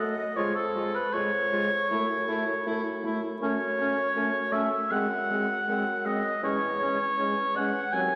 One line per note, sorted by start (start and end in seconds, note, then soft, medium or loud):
0.00 0.28 F#2 medium
0.00 0.15 A3 medium
0.00 0.14 A4 medium
0.00 0.36 D#5 medium
0.00 0.38 D#5 loud
0.36 1.05 F2 loud
0.36 0.52 G#3 medium
0.36 0.53 F4 medium
0.36 0.55 C#5 medium
0.36 0.58 C#5 medium
0.55 0.96 A4 loud
0.55 0.98 A4 medium
0.75 0.91 G#3 medium
0.75 0.91 F4 medium
0.95 1.15 B4 medium
0.95 1.16 B4 medium
1.14 1.82 F2 medium
1.14 1.30 G#3 medium
1.14 1.30 F4 medium
1.14 3.04 C#5 loud
1.14 3.05 C#5 loud
1.53 1.69 G#3 medium
1.53 1.69 F4 medium
1.91 2.58 F#2 medium
1.91 2.07 A3 medium
1.91 2.07 E4 medium
2.28 2.44 A3 medium
2.28 2.44 E4 medium
2.66 3.33 F#2 medium
2.66 2.82 A3 medium
2.66 2.82 E4 medium
3.04 3.20 A3 medium
3.04 3.21 E4 medium
3.40 4.07 F#2 loud
3.40 3.57 A3 medium
3.40 3.58 C#4 medium
3.40 4.54 C#5 loud
3.78 3.94 A3 medium
3.78 3.96 C#4 medium
4.15 4.82 F#2 medium
4.15 4.31 A3 medium
4.15 4.32 C#4 medium
4.52 4.68 A3 medium
4.52 4.70 C#4 medium
4.52 4.93 E5 loud
4.52 4.94 E5 medium
4.91 5.60 F#2 medium
4.91 5.07 G#3 medium
4.91 5.07 C4 medium
4.91 6.07 F#5 loud
4.91 6.08 F#5 medium
5.30 5.46 G#3 medium
5.30 5.47 C4 medium
5.68 6.34 F#2 medium
5.68 5.84 G#3 medium
5.68 5.85 C4 medium
6.05 6.21 G#3 medium
6.05 6.22 C4 medium
6.05 6.43 D#5 loud
6.05 6.45 D#5 medium
6.42 7.01 E2 loud
6.42 6.59 G#3 medium
6.42 6.59 C#4 medium
6.42 7.24 C#5 loud
6.42 7.57 C#5 loud
6.81 6.97 G#3 medium
6.81 6.98 C#4 medium
7.18 7.84 E2 medium
7.18 7.34 G#3 medium
7.18 7.35 C#4 medium
7.55 7.71 G#3 medium
7.55 7.73 C#4 medium
7.55 7.93 F#5 medium
7.55 7.94 F#5 loud
7.92 8.15 D#2 loud
7.92 8.08 F#3 medium
7.92 8.09 C4 medium
7.92 8.15 G#5 medium